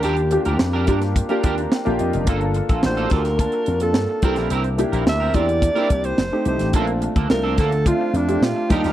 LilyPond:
<<
  \new Staff \with { instrumentName = "Alto saxophone" } { \time 4/4 \key bes \major \tempo 4 = 107 g'4 r2. | r4 c''8 bes'4~ bes'16 a'8. a'8 | r4 e''8 d''4~ d''16 c''8. c''8 | r4 bes'8 a'8 f'8 d'8 f'8 ees'8 | }
  \new Staff \with { instrumentName = "Clean electric guitar" } { \time 4/4 \key bes \major <d' g' bes'>16 r8 <d' g' bes'>16 r16 <d' g' bes'>16 <d' g' bes'>16 r8 <d' g' bes'>16 <d' g' bes'>16 r4 r16 | <bes f' a'>16 r8 <bes f' a'>16 r16 <bes f' a'>16 <bes f' a'>16 r4. r16 <c' e' bes'>16 <c' e' bes'>16 | <c' e' bes'>16 r8 <c' e' bes'>16 r16 <c' e' bes'>16 <c' e' bes'>16 r8 <c' e' bes'>16 r4. | <bes d' a'>16 r8 <bes d' a'>16 r16 <bes d' a'>16 <bes d' a'>16 r4. r16 <d' g' bes'>16 <d' g' bes'>16 | }
  \new Staff \with { instrumentName = "Grand piano" } { \time 4/4 \key bes \major << { r2 r8 bes''8 g''8 ees''8 | r1 | r1 | r1 | } \\ { <bes d' f' g'>8 <bes d' f' g'>4 <bes d' f' g'>8. <bes d' f' g'>4 <bes d' f' g'>8. | <bes d' f' a'>4 <bes d' f' fis' g'>4 <bes d' f' a''>8. <bes d' f' a'>8. <bes d' e' g'>8~ | <bes d' e' g'>8 <bes d' e' g'>4 <bes d' e' g'>8. <bes d' e' g'>8. r16 <a c' ees' g'>8. | <a c' cis' d' f'>4 <a c' d' f'>4 <a c' d' f'>8. <a c' d' g'>8. <g bes d' f'>8 | } >> }
  \new Staff \with { instrumentName = "Slap bass" } { \clef bass \time 4/4 \key bes \major ees,8. d,16 f,8 g,8. r16 ees,8 r16 bes,,16 f,16 f,,16 | g,,8. bes,,16 a,,8 d,8. r16 f,8 g,16 r16 c,16 bes,,16 | c,8. bes,,16 d,8 e,8. r16 c,8 f,,16 r16 c,16 a,,16 | bes,,8. d,16 c,8 d,8. r16 f,8 bes,16 r16 ees,16 d,16 | }
  \new DrumStaff \with { instrumentName = "Drums" } \drummode { \time 4/4 hh16 hh16 hh16 hh16 sn8 <hh bd>16 <hh sn>16 <hh bd>16 hh16 <hh bd>16 hh16 sn16 hh16 hh16 hh16 | <hh bd>16 hh16 hh16 <hh bd>16 sn16 hh16 <hh bd sn>16 <hh sn>16 <hh bd>16 hh16 hh16 hh16 sn8 <hh bd>16 <hh sn>16 | hh16 hh16 hh16 hh16 sn8 <hh bd>16 hh16 <hh bd>16 hh16 <hh bd>16 hh16 sn8 hh16 <hh sn>16 | <hh bd>16 hh16 hh16 <hh bd>16 sn8 <hh bd sn>16 hh16 <hh bd>8 hh16 hh16 sn8 <hh bd>16 <hh sn>16 | }
>>